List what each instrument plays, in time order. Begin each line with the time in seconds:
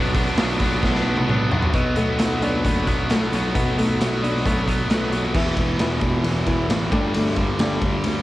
Already playing: picked electric bass B1, distorted electric guitar B2 F#3 B3 D4
0.14 distorted electric guitar F#3 B3 D4, kick, open hi-hat
0.37 picked electric bass B1, distorted electric guitar B2 F#3 B3 D4, snare, open hi-hat
0.60 picked electric bass B1, distorted electric guitar F#3 B3 D4, kick, open hi-hat
0.83 picked electric bass B1, kick, snare
0.96 snare
1.05 picked electric bass B1
1.17 high tom
1.28 picked electric bass B1, distorted electric guitar B2 F#3 B3 D4, mid tom
1.51 picked electric bass B1, distorted electric guitar F#3 B3 D4, floor tom
1.62 floor tom
1.73 picked electric bass B1, steel-string acoustic guitar B2, distorted electric guitar B2 F#3 B3, kick, closed hi-hat
1.96 picked electric bass B1, distorted electric guitar B2 F#3 B3, steel-string acoustic guitar A3, closed hi-hat
2.18 picked electric bass B1, distorted electric guitar B2 F#3 B3, steel-string acoustic guitar F#3, snare, closed hi-hat
2.42 distorted electric guitar B2 F#3 B3, steel-string acoustic guitar D4, closed hi-hat
2.64 picked electric bass F#1, distorted electric guitar B2 F#3 B3, steel-string acoustic guitar A3, kick, closed hi-hat
2.87 picked electric bass B1, distorted electric guitar B2 F#3 B3, steel-string acoustic guitar F#3, kick, closed hi-hat
3.10 picked electric bass B1, distorted electric guitar B2 F#3 B3, steel-string acoustic guitar A3, snare, closed hi-hat
3.32 picked electric bass B1, distorted electric guitar B2 F#3 B3, steel-string acoustic guitar F#3, closed hi-hat
3.55 picked electric bass B1, steel-string acoustic guitar B2, distorted electric guitar B2 F#3 B3, kick, closed hi-hat
3.77 picked electric bass B1, distorted electric guitar B2 F#3 B3, steel-string acoustic guitar A3, closed hi-hat
4.00 picked electric bass B1, distorted electric guitar B2 F#3 B3, steel-string acoustic guitar F#3, snare, closed hi-hat
4.22 distorted electric guitar B2 F#3 B3, steel-string acoustic guitar D4, closed hi-hat
4.37 snare
4.45 picked electric bass B1, distorted electric guitar B2 F#3 B3, steel-string acoustic guitar A3, kick, closed hi-hat
4.67 distorted electric guitar B2 F#3 B3, steel-string acoustic guitar F#3, kick, closed hi-hat
4.89 picked electric bass B1, distorted electric guitar B2 F#3 B3, steel-string acoustic guitar A3, snare, closed hi-hat
5.12 distorted electric guitar B2 F#3 B3, steel-string acoustic guitar F#3, closed hi-hat
5.34 picked electric bass E1, distorted electric guitar E2 B2 E3, steel-string acoustic guitar E3 B3 E4, kick, crash
5.47 snare
5.57 picked electric bass E1, steel-string acoustic guitar E3 B3, kick, ride
5.79 picked electric bass E1, steel-string acoustic guitar E3 B3 E4, snare, ride
6.01 steel-string acoustic guitar E3 B3, kick, ride
6.24 picked electric bass E1, steel-string acoustic guitar E3 B3, ride
6.46 steel-string acoustic guitar E3 B3 E4, kick, ride
6.69 picked electric bass A1, steel-string acoustic guitar E3 B3, snare, ride
6.91 picked electric bass G1, distorted electric guitar G2 D3 G3, steel-string acoustic guitar G3 A3 D4, kick, ride
7.14 picked electric bass G1, steel-string acoustic guitar G3 A3 D4, ride
7.26 snare
7.36 picked electric bass G1, steel-string acoustic guitar G3 A3, kick, ride
7.59 picked electric bass G1, steel-string acoustic guitar G3 A3 D4, snare, ride
7.81 picked electric bass G1, steel-string acoustic guitar G3 A3, kick, ride
8.04 picked electric bass D2, steel-string acoustic guitar G3 A3, ride